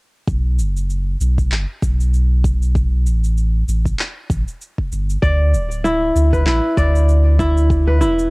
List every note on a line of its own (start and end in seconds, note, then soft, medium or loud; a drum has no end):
0.28 0.60 B1 medium
0.28 kick loud
0.28 cabasa soft
0.59 1.16 F#1 medium
0.59 cabasa medium
0.77 cabasa soft
0.90 cabasa soft
1.20 1.53 B1 medium
1.20 cabasa medium
1.38 kick medium
1.38 cabasa soft
1.51 1.65 F#1 loud
1.51 clap medium
1.51 cabasa soft
1.82 3.07 B1 loud
1.82 kick medium
1.82 cabasa medium
2.00 cabasa soft
2.14 cabasa soft
2.44 kick medium
2.44 cabasa medium
2.62 cabasa soft
2.75 kick loud
2.75 cabasa soft
3.06 3.63 A1 medium
3.06 cabasa medium
3.24 cabasa soft
3.37 cabasa soft
3.68 3.93 A1 medium
3.68 cabasa medium
3.85 kick medium
3.85 cabasa soft
3.99 clap medium
3.99 cabasa soft
4.30 4.44 A1 loud
4.30 kick loud
4.30 cabasa medium
4.48 cabasa soft
4.61 cabasa soft
4.78 kick medium
4.92 5.17 G1 medium
4.92 cabasa medium
5.10 cabasa soft
5.22 5.55 D2 medium
5.22 6.33 D5 medium
5.22 kick loud
5.22 cabasa soft
5.53 6.11 D1 medium
5.53 cabasa medium
5.71 cabasa soft
5.84 6.46 E4 medium
5.84 cabasa soft
6.15 6.48 D2 medium
6.15 cabasa medium
6.33 7.56 B4 medium
6.33 kick medium
6.33 cabasa soft
6.46 6.60 A1 loud
6.46 7.39 E4 medium
6.46 clap medium
6.46 cabasa soft
6.77 8.02 D2 loud
6.77 7.88 D5 medium
6.77 kick loud
6.77 cabasa medium
6.95 cabasa soft
7.09 cabasa soft
7.39 8.00 E4 loud
7.39 kick loud
7.39 cabasa medium
7.57 cabasa soft
7.70 kick loud
7.70 cabasa soft
7.87 8.30 B4 medium
8.01 8.30 E1 medium
8.01 8.30 E4 medium
8.01 cabasa medium
8.19 cabasa soft